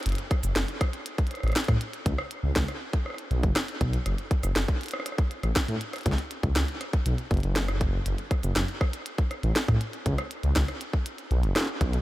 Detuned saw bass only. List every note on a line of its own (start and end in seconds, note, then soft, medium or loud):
0.06 0.14 F#1 loud
0.43 0.51 F#1 loud
0.56 0.64 F#1 medium
1.43 1.51 A1 loud
1.68 1.76 A2 medium
2.06 2.14 C#2 loud
2.43 2.51 C#2 loud
2.56 2.64 C#2 medium
3.31 3.45 B1 loud
3.43 3.51 F#1 medium
3.81 3.97 B1 loud
4.06 4.14 F#1 loud
4.43 4.51 F#1 loud
4.56 4.64 F#1 medium
5.43 5.51 A1 loud
5.68 5.76 A2 loud
6.06 6.14 C#2 loud
6.43 6.51 C#2 loud
6.56 6.64 C#2 medium
7.06 7.14 B1 medium
7.31 7.39 F#1 loud
7.43 7.99 F#1 loud
8.06 8.14 F#1 medium
8.43 8.51 F#1 loud
8.56 8.64 F#1 medium
9.43 9.51 A1 medium
9.68 9.76 A2 loud
10.06 10.14 C#2 loud
10.43 10.51 C#2 loud
10.56 10.64 C#2 medium
11.31 11.45 B1 loud
11.43 11.51 F#1 loud
11.81 11.97 B1 loud